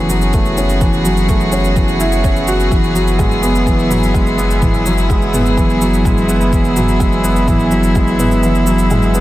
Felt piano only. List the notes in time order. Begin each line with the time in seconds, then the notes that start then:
Already playing: E3 F#3 A3 C#4
0.10 F#3
0.34 A3
0.58 C#4
0.81 E3
1.05 F#3
1.29 A3
1.52 C#4
1.76 E3
2.00 E4
2.24 C#4
2.48 F#4
2.71 E3
2.95 F#3
3.19 G#3
3.43 B3
3.67 E3
3.90 F#3
4.14 G#3
4.38 B3
4.62 E3
4.86 F#3
5.10 G#3
5.33 B3
5.57 E3
5.82 F#3
6.05 G#3
6.28 B3
6.53 E3
6.77 F#3
7.00 G#3
7.24 B3
7.48 E3
7.71 F#3
7.96 G#3
8.19 B3
8.43 E3
8.67 F#3
8.91 G#3
9.15 B3